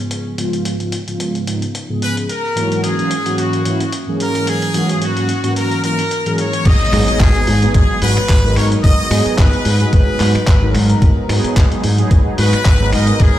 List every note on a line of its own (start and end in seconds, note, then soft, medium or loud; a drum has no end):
0.00 0.35 G#2 medium
0.00 0.35 C#3 medium
0.00 0.35 F3 medium
0.00 0.35 G#3 medium
0.00 0.35 B3 medium
0.00 0.36 G#4 medium
0.11 closed hi-hat medium
0.37 0.77 G#2 medium
0.37 0.77 C#3 medium
0.37 0.77 F3 medium
0.37 0.77 G#3 medium
0.37 0.77 B3 medium
0.37 0.77 F4 loud
0.37 closed hi-hat medium
0.53 closed hi-hat soft
0.65 closed hi-hat medium
0.80 0.95 G#2 medium
0.80 0.95 C#3 medium
0.80 0.95 F3 medium
0.80 0.95 G#3 medium
0.80 0.96 B3 medium
0.80 0.96 F4 medium
0.80 closed hi-hat soft
0.92 closed hi-hat medium
1.07 1.44 G#2 medium
1.07 1.44 C#3 medium
1.07 1.44 F3 medium
1.07 1.44 G#3 medium
1.07 1.44 B3 medium
1.07 1.44 F4 medium
1.07 closed hi-hat soft
1.20 closed hi-hat medium
1.35 closed hi-hat soft
1.46 1.64 G#2 medium
1.46 1.64 C#3 medium
1.46 1.64 F3 medium
1.46 1.65 G#3 medium
1.46 1.65 B3 medium
1.46 1.65 D#4 medium
1.46 closed hi-hat medium
1.62 closed hi-hat soft
1.75 closed hi-hat medium
1.89 2.27 G#2 medium
1.89 2.27 C#3 medium
1.89 2.28 F3 medium
1.89 2.28 G#3 medium
1.89 2.28 B3 medium
1.89 2.28 G#4 medium
2.02 2.15 B4 medium
2.02 closed hi-hat medium
2.17 closed hi-hat soft
2.29 2.80 A#4 loud
2.29 closed hi-hat medium
2.55 2.95 G#2 medium
2.55 2.95 E3 medium
2.55 2.95 F#3 medium
2.55 2.95 A#3 medium
2.55 2.95 C#4 medium
2.55 2.95 F#4 loud
2.55 closed hi-hat medium
2.72 closed hi-hat soft
2.84 3.38 G#4 medium
2.84 closed hi-hat medium
2.98 3.13 G#2 medium
2.98 3.14 E3 medium
2.98 3.14 F#3 medium
2.98 3.14 A#3 medium
2.98 3.14 C#4 medium
2.98 3.14 F#4 medium
2.98 closed hi-hat soft
3.11 closed hi-hat medium
3.25 3.62 G#2 medium
3.25 3.62 E3 medium
3.25 3.62 F#3 medium
3.25 3.62 A#3 medium
3.25 3.62 C#4 medium
3.25 3.63 F#4 medium
3.25 closed hi-hat soft
3.38 3.93 F#4 medium
3.38 closed hi-hat medium
3.53 closed hi-hat soft
3.65 3.82 G#2 medium
3.65 3.83 E3 medium
3.65 3.83 F#3 medium
3.65 3.83 A#3 medium
3.65 3.83 C#4 medium
3.65 3.83 E4 medium
3.65 closed hi-hat medium
3.80 closed hi-hat soft
3.92 closed hi-hat medium
4.06 4.71 G#2 medium
4.06 4.71 E3 medium
4.06 4.71 F#3 medium
4.06 4.72 A#3 medium
4.06 4.72 C#4 medium
4.06 4.72 G#4 medium
4.20 4.46 A#4 loud
4.20 closed hi-hat medium
4.35 closed hi-hat soft
4.47 5.02 G#4 loud
4.47 closed hi-hat medium
4.62 closed hi-hat soft
4.74 5.13 G#2 loud
4.74 5.13 E3 medium
4.74 5.13 F#3 medium
4.74 5.13 A#3 medium
4.74 5.13 C#4 medium
4.74 5.13 F#4 loud
4.74 closed hi-hat medium
4.89 closed hi-hat soft
5.02 5.53 F#4 medium
5.02 closed hi-hat medium
5.16 5.32 G#2 medium
5.16 5.32 E3 medium
5.16 5.32 F#3 medium
5.16 5.32 A#3 medium
5.16 5.32 C#4 medium
5.16 5.32 F#4 medium
5.16 closed hi-hat soft
5.29 closed hi-hat medium
5.43 5.80 G#2 medium
5.43 5.80 E3 medium
5.43 5.80 F#3 medium
5.43 5.81 A#3 medium
5.43 5.81 C#4 medium
5.43 5.81 F#4 medium
5.43 closed hi-hat medium
5.56 5.83 A#4 medium
5.56 closed hi-hat medium
5.71 closed hi-hat soft
5.83 6.01 G#2 medium
5.83 6.01 E3 medium
5.83 6.01 F#3 medium
5.83 6.01 A#3 medium
5.83 6.01 C#4 medium
5.83 6.01 E4 medium
5.83 6.35 A#4 medium
5.83 closed hi-hat medium
5.99 closed hi-hat soft
6.11 closed hi-hat medium
6.25 6.64 G#2 medium
6.25 6.64 E3 medium
6.25 6.64 F#3 medium
6.25 6.64 A#3 medium
6.25 6.64 C#4 medium
6.25 6.64 G#4 medium
6.25 closed hi-hat soft
6.38 6.64 C#5 loud
6.38 closed hi-hat medium
6.53 closed hi-hat soft
6.65 6.75 G#1 loud
6.65 7.20 D#5 loud
6.65 kick loud
6.65 closed hi-hat medium
6.65 crash loud
6.65 impact medium
6.92 7.02 G#2 medium
6.92 7.31 F#3 loud
6.92 7.31 G#3 medium
6.92 7.31 B3 medium
6.92 7.31 D#4 medium
6.92 7.32 G#4 loud
6.92 finger snap medium
6.92 open hi-hat loud
7.08 muted fingered electric bass stroke soft
7.08 closed hi-hat medium
7.20 7.30 G#1 loud
7.20 7.73 G#4 loud
7.20 kick loud
7.20 clap loud
7.20 closed hi-hat medium
7.35 7.50 F#3 medium
7.35 7.50 G#3 medium
7.35 7.50 B3 medium
7.35 7.50 D#4 medium
7.35 7.51 G#4 medium
7.35 closed hi-hat soft
7.47 7.66 G#2 medium
7.47 open hi-hat medium
7.62 7.99 F#3 medium
7.62 7.99 G#3 medium
7.62 7.99 B3 medium
7.62 7.99 D#4 medium
7.62 7.99 G#4 loud
7.62 closed hi-hat medium
7.74 7.84 G#1 loud
7.74 8.00 G#4 loud
7.74 kick loud
7.74 closed hi-hat medium
8.01 8.17 G#2 medium
8.01 8.19 F#3 medium
8.01 8.19 G#3 medium
8.01 8.19 B3 medium
8.01 8.19 D#4 medium
8.01 8.20 F#4 medium
8.01 8.52 B4 loud
8.01 open hi-hat loud
8.17 finger snap medium
8.17 muted fingered electric bass stroke soft
8.17 closed hi-hat medium
8.29 8.58 G#1 medium
8.29 kick loud
8.29 clap loud
8.29 closed hi-hat medium
8.43 9.07 F#3 medium
8.43 9.08 G#3 medium
8.43 9.08 B3 medium
8.43 9.08 D#4 medium
8.43 9.09 A#4 medium
8.56 8.75 G#2 medium
8.56 8.68 C#5 medium
8.56 finger snap medium
8.56 open hi-hat loud
8.72 closed hi-hat medium
8.83 8.93 G#1 loud
8.83 9.34 D#5 loud
8.83 kick loud
8.83 closed hi-hat medium
9.10 9.20 G#2 medium
9.10 9.49 F#3 loud
9.10 9.49 G#3 medium
9.10 9.50 B3 medium
9.10 9.50 D#4 medium
9.10 9.50 G#4 loud
9.10 finger snap medium
9.10 open hi-hat loud
9.26 muted fingered electric bass stroke soft
9.26 closed hi-hat medium
9.38 9.48 G#1 loud
9.38 9.92 B4 loud
9.38 kick loud
9.38 clap loud
9.38 closed hi-hat medium
9.53 9.68 F#3 medium
9.53 9.68 G#3 medium
9.53 9.69 B3 medium
9.53 9.69 D#4 medium
9.53 9.69 G#4 medium
9.53 closed hi-hat soft
9.65 9.84 G#2 medium
9.65 open hi-hat loud
9.80 10.17 F#3 medium
9.80 10.17 G#3 medium
9.80 10.17 B3 medium
9.80 10.17 D#4 medium
9.80 10.18 G#4 loud
9.80 closed hi-hat medium
9.93 10.02 G#1 loud
9.93 10.71 B4 medium
9.93 kick loud
9.93 closed hi-hat medium
10.19 10.34 G#2 medium
10.19 10.37 F#3 medium
10.19 10.37 G#3 medium
10.19 10.37 B3 medium
10.19 10.37 D#4 medium
10.19 10.38 F#4 medium
10.19 clap medium
10.19 open hi-hat loud
10.35 finger snap medium
10.35 muted fingered electric bass stroke soft
10.35 closed hi-hat medium
10.47 10.76 G#1 medium
10.47 kick loud
10.47 clap loud
10.47 closed hi-hat medium
10.61 11.26 F#3 medium
10.61 11.26 G#3 medium
10.61 11.26 B3 medium
10.61 11.26 D#4 medium
10.61 11.27 A#4 medium
10.75 10.93 G#2 medium
10.75 finger snap medium
10.75 open hi-hat loud
10.90 closed hi-hat medium
11.02 11.11 G#1 loud
11.02 kick loud
11.02 closed hi-hat medium
11.28 11.39 G#2 medium
11.28 11.67 F#3 loud
11.28 11.67 G#3 medium
11.28 11.68 B3 medium
11.28 11.68 D#4 medium
11.28 11.68 G#4 loud
11.28 finger snap medium
11.28 open hi-hat loud
11.44 muted fingered electric bass stroke soft
11.44 closed hi-hat soft
11.56 11.66 G#1 loud
11.56 kick loud
11.56 clap loud
11.56 closed hi-hat medium
11.71 11.86 F#3 medium
11.71 11.86 G#3 medium
11.71 11.87 B3 medium
11.71 11.87 D#4 medium
11.71 11.87 G#4 medium
11.71 closed hi-hat soft
11.84 12.02 G#2 medium
11.84 open hi-hat medium
11.97 12.35 F#3 medium
11.97 12.35 G#3 medium
11.97 12.35 B3 medium
11.97 12.35 D#4 medium
11.97 12.35 G#4 loud
11.97 closed hi-hat medium
12.11 12.21 G#1 loud
12.11 kick loud
12.11 closed hi-hat medium
12.37 12.53 G#2 medium
12.37 12.55 F#3 medium
12.37 12.55 G#3 medium
12.37 12.55 B3 medium
12.37 12.56 D#4 medium
12.37 12.56 F#4 medium
12.37 12.89 B4 loud
12.37 open hi-hat loud
12.53 finger snap medium
12.53 muted fingered electric bass stroke soft
12.53 closed hi-hat medium
12.65 12.95 G#1 medium
12.65 kick loud
12.65 clap loud
12.65 closed hi-hat medium
12.80 13.39 F#3 medium
12.80 13.39 G#3 medium
12.80 13.39 B3 medium
12.80 13.39 D#4 medium
12.80 13.39 A#4 medium
12.93 13.11 G#2 medium
12.93 13.20 D#5 loud
12.93 finger snap medium
12.93 open hi-hat loud
13.07 closed hi-hat soft
13.20 13.30 G#1 loud
13.20 13.39 G#4 loud
13.20 kick loud
13.20 closed hi-hat medium